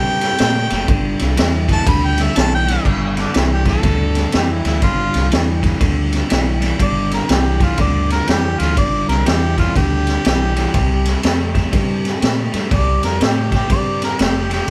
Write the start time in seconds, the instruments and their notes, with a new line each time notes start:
Already playing: fingered electric bass G2, overdriven electric guitar C3 G3, harmonica G5
0.21 snare, ride
0.38 fingered electric bass A#2, overdriven electric guitar C3 A3, snare, ride
0.70 fingered electric bass F#1, overdriven electric guitar C3 A3, snare, ride
0.88 fingered electric bass G1, overdriven electric guitar G2 D3, kick, ride
1.19 fingered electric bass C2, snare, ride
1.36 fingered electric bass E2, overdriven electric guitar G2 E3, snare, ride
1.68 overdriven electric guitar G2 E3, kick, snare, ride
1.73 harmonica A5
1.86 fingered electric bass D2, overdriven electric guitar G2 D3, harmonica B5, kick, snare, ride
2.05 harmonica G5
2.18 snare, ride
2.22 harmonica E5
2.35 fingered electric bass B1, overdriven electric guitar G2 E3, harmonica A5, snare, ride
2.55 harmonica G5
2.66 overdriven electric guitar G2 E3, snare, ride
2.84 fingered electric bass G1, overdriven electric guitar G2 D3, kick, crash
3.17 harmonica D4, snare, ride
3.34 fingered electric bass C2, overdriven electric guitar G2 E3, harmonica E4, snare, ride
3.52 harmonica G4
3.65 overdriven electric guitar G2 E3, harmonica A4, kick, snare, ride
3.83 fingered electric bass D2, overdriven electric guitar G2 D3, kick, snare, ride
4.15 snare, ride
4.32 fingered electric bass F2, overdriven electric guitar G2 E3, snare, ride
4.36 harmonica G4
4.51 harmonica E4
4.64 fingered electric bass D2, overdriven electric guitar G2 E3, harmonica E4, snare, ride
4.81 fingered electric bass G1, overdriven electric guitar G2 D3, harmonica F4, kick, snare, ride
5.14 fingered electric bass C2, snare, ride
5.30 fingered electric bass E2, overdriven electric guitar G2 E3, snare, ride
5.62 overdriven electric guitar G2 E3, kick, snare, ride
5.79 fingered electric bass D2, overdriven electric guitar G2 D3, kick, snare, ride
6.13 snare, ride
6.29 fingered electric bass B1, overdriven electric guitar G2 E3, snare, ride
6.60 overdriven electric guitar G2 E3, snare, ride
6.78 fingered electric bass G1, overdriven electric guitar G2 D3, harmonica D5, kick, ride
7.11 harmonica A#4, snare, ride
7.28 fingered electric bass C2, overdriven electric guitar G2 E3, harmonica G4, snare, ride
7.60 overdriven electric guitar G2 E3, kick, snare, ride
7.64 harmonica F4
7.77 fingered electric bass D2, overdriven electric guitar G2 D3, harmonica D5, kick, snare, ride
8.10 harmonica A#4, snare, ride
8.27 fingered electric bass F2, overdriven electric guitar G2 E3, harmonica G4, snare, ride
8.58 fingered electric bass D2, overdriven electric guitar G2 E3, harmonica F4, snare, ride
8.75 fingered electric bass G1, overdriven electric guitar G2 D3, harmonica D5, kick, ride
9.08 fingered electric bass C2, harmonica A#4, snare, ride
9.25 fingered electric bass E2, overdriven electric guitar G2 E3, harmonica G4, snare, ride
9.57 overdriven electric guitar G2 E3, harmonica F4, kick, snare, ride
9.75 fingered electric bass D2, overdriven electric guitar G2 D3, harmonica G4, kick, snare, ride
10.07 snare, ride
10.25 fingered electric bass B1, overdriven electric guitar G2 E3, snare, ride
10.56 overdriven electric guitar G2 E3, snare, ride
10.74 fingered electric bass C2, overdriven electric guitar C3 G3, kick, snare, ride
11.05 snare, ride
11.23 fingered electric bass F2, overdriven electric guitar C3 A3, snare, ride
11.54 overdriven electric guitar C3 A3, kick, snare, ride
11.72 fingered electric bass G2, overdriven electric guitar C3 G3, kick, snare, ride
12.05 snare, ride
12.21 fingered electric bass A#2, overdriven electric guitar C3 A3, snare, ride
12.52 fingered electric bass G2, overdriven electric guitar C3 A3, snare, ride
12.71 fingered electric bass C2, overdriven electric guitar C3 G3, harmonica D5, kick, snare, ride
13.03 fingered electric bass F2, harmonica A#4, snare, ride
13.20 fingered electric bass A2, overdriven electric guitar C3 A3, harmonica G4, snare, ride
13.52 overdriven electric guitar C3 A3, harmonica G4, kick, snare, ride
13.69 fingered electric bass G2, overdriven electric guitar C3 G3, harmonica D5, kick, snare, ride
14.02 harmonica A#4, snare, ride
14.18 fingered electric bass F1, overdriven electric guitar C3 A3, snare, ride
14.23 harmonica G4
14.50 overdriven electric guitar C3 A3, harmonica G4, snare, ride